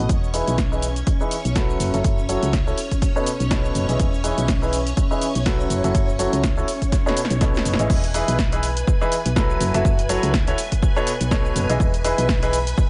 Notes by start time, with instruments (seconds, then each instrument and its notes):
Already playing: string machine D#5
0.09 fm bass E1, string machine C#4 C#5, kick, closed hi-hat, shaker
0.24 shaker
0.34 grand piano E3 D#4 E4 G#4 B4, open hi-hat, shaker
0.48 fm bass B1, closed hi-hat, shaker
0.58 kick, snare, closed hi-hat, shaker
0.72 grand piano E3 D#4 E4 G#4 B4, shaker
0.82 open hi-hat, shaker
0.96 closed hi-hat, shaker
1.07 kick, closed hi-hat, shaker
1.21 grand piano E3 D#4 E4 G#4 B4, shaker
1.31 open hi-hat, shaker
1.45 fm bass B1, closed hi-hat, shaker
1.56 grand piano F#3 E4 F#4 A4 B4, kick, snare, closed hi-hat, shaker
1.70 shaker
1.80 fm bass F#1, open hi-hat, shaker
1.94 fm bass F#1, grand piano F#3 E4 F#4 A4 E5, closed hi-hat, shaker
2.04 fm bass F#1, kick, closed hi-hat, shaker
2.19 shaker
2.29 grand piano F#3 E4 F#4 A4 C#5, open hi-hat, shaker
2.43 fm bass C#2, closed hi-hat, shaker
2.53 kick, snare, closed hi-hat, shaker
2.67 grand piano E4 F#4 A4 C#5, shaker
2.78 open hi-hat, shaker
2.91 kick, closed hi-hat, shaker
3.02 kick, closed hi-hat, shaker
3.16 grand piano B2 D#4 A4 B4 C#5, shaker
3.26 open hi-hat, shaker
3.40 fm bass B1, closed hi-hat, shaker
3.51 grand piano B2 D#4 A4 B4 C#5, kick, snare, closed hi-hat, shaker
3.65 shaker
3.75 fm bass F#1, open hi-hat, shaker
3.89 fm bass B1, grand piano E3 D#4 E4 G#4 D#5, closed hi-hat, shaker
4.00 fm bass E1, kick, closed hi-hat, shaker
4.14 shaker
4.24 grand piano E3 D#4 E4 G#4 B4, open hi-hat, shaker
4.38 fm bass B1, closed hi-hat, shaker
4.48 kick, snare, closed hi-hat, shaker
4.62 grand piano E3 D#4 E4 G#4 B4, shaker
4.73 open hi-hat, shaker
4.87 closed hi-hat, shaker
4.97 kick, closed hi-hat, shaker
5.11 grand piano E3 D#4 E4 G#4 B4, shaker
5.21 open hi-hat, shaker
5.35 fm bass B1, closed hi-hat, shaker
5.46 grand piano F#3 E4 F#4 A4 B4, kick, snare, closed hi-hat, shaker
5.61 shaker
5.70 fm bass F#1, open hi-hat, shaker
5.84 fm bass F#1, grand piano F#3 E4 F#4 A4 E5, closed hi-hat, shaker
5.95 fm bass F#1, kick, closed hi-hat, shaker
6.09 shaker
6.19 grand piano F#3 E4 F#4 A4 C#5, open hi-hat, shaker
6.33 fm bass C#2, closed hi-hat, shaker
6.43 kick, snare, closed hi-hat, shaker
6.57 grand piano E4 F#4 A4 C#5, shaker
6.68 open hi-hat, shaker
6.82 kick, closed hi-hat, shaker
6.92 kick, snare, closed hi-hat, shaker
7.06 grand piano B2 D#4 A4 B4 C#5, snare, shaker
7.17 open hi-hat, shaker
7.25 snare
7.30 fm bass B1, closed hi-hat, shaker
7.41 grand piano B2 D#4 A4 B4 C#5, kick, snare, closed hi-hat, shaker
7.56 snare, shaker
7.65 fm bass F#1, open hi-hat, shaker
7.74 snare
7.79 fm bass A1, grand piano E3 D#4 E4 G#4 D#5, closed hi-hat, shaker
7.90 fm bass E1, string machine B4 G#5, kick, crash, shaker
8.04 closed hi-hat, shaker
8.14 grand piano E3 D#4 E4 G#4 B4, open hi-hat, shaker
8.28 fm bass B1, closed hi-hat, shaker
8.39 kick, snare, shaker
8.52 grand piano E3 D#4 E4 G#4 B4, closed hi-hat, shaker
8.63 open hi-hat, shaker
8.77 closed hi-hat, shaker
8.87 kick, shaker
9.01 grand piano E3 D#4 E4 G#4 B4, shaker
9.12 open hi-hat, shaker
9.26 fm bass B1, closed hi-hat, shaker
9.36 grand piano F#3 E4 F#4 A4 B4, kick, snare, shaker
9.51 shaker
9.61 fm bass F#1, open hi-hat, shaker
9.74 fm bass F#1, grand piano F#3 E4 F#4 A4 E5, closed hi-hat, shaker
9.85 fm bass F#1, kick, shaker
9.99 closed hi-hat, shaker
10.09 grand piano F#3 E4 F#4 A4 C#5, open hi-hat, shaker
10.23 fm bass C#2, closed hi-hat, shaker
10.34 kick, snare, shaker
10.48 grand piano E4 F#4 A4 C#5, closed hi-hat, shaker
10.58 open hi-hat, shaker
10.72 kick, closed hi-hat, shaker
10.82 kick, shaker
10.96 grand piano B2 D#4 A4 B4 C#5, shaker
11.07 open hi-hat, shaker
11.21 fm bass B1, closed hi-hat, shaker
11.31 grand piano B2 D#4 A4 B4 C#5, kick, snare, shaker
11.46 shaker
11.56 fm bass F#1, open hi-hat, shaker
11.69 fm bass B1, grand piano E3 D#4 E4 G#4 D#5, closed hi-hat, shaker
11.80 fm bass E1, kick, shaker
11.94 closed hi-hat, shaker
12.04 grand piano E3 D#4 E4 G#4 B4, open hi-hat, shaker
12.18 fm bass B1, closed hi-hat, shaker
12.29 kick, snare, shaker
12.43 grand piano E3 D#4 E4 G#4 B4, closed hi-hat, shaker
12.53 open hi-hat, shaker
12.67 closed hi-hat, shaker
12.78 kick, shaker